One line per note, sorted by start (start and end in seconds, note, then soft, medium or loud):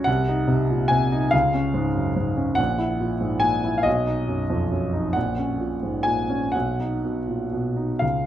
0.04 1.28 C2 medium
0.04 0.89 F#5 medium
0.28 0.61 D#4 soft
0.48 0.82 C3 soft
0.70 0.91 A#2 soft
0.88 1.24 C3 soft
0.88 1.31 G#5 medium
1.12 1.33 D#4 soft
1.31 2.55 C#2 medium
1.31 2.57 F5 medium
1.54 1.87 C#4 soft
1.74 2.08 G#2 soft
1.95 2.16 F#2 soft
2.16 2.50 G#2 soft
2.37 2.58 C#4 soft
2.55 3.82 A#1 soft
2.55 3.42 F#5 medium
2.78 3.13 E4 soft
3.00 3.34 A#2 soft
3.21 3.43 G#2 soft
3.40 3.77 A#2 soft
3.40 3.77 G#5 medium
3.64 3.86 E4 soft
3.78 3.85 F5 medium
3.83 5.11 B1 medium
3.83 5.14 D#5 medium
4.07 4.41 D#4 soft
4.28 4.62 F#2 soft
4.50 4.71 F2 soft
4.71 5.06 F#2 soft
4.93 5.15 D#4 soft
5.13 6.50 A#1 soft
5.13 6.05 F#5 medium
5.38 5.74 C#4 soft
5.60 5.96 A#2 soft
5.83 6.06 G#2 soft
6.03 6.44 A#2 soft
6.03 6.53 G#5 medium
6.29 6.54 C#4 soft
6.52 7.98 B1 soft
6.52 8.01 F#5 medium
6.80 7.19 D#4 soft
7.05 7.43 B2 soft
7.28 7.52 A#2 soft
7.52 7.92 B2 soft
7.76 8.02 D#4 soft
7.99 8.26 C#2 soft
7.99 8.26 F5 medium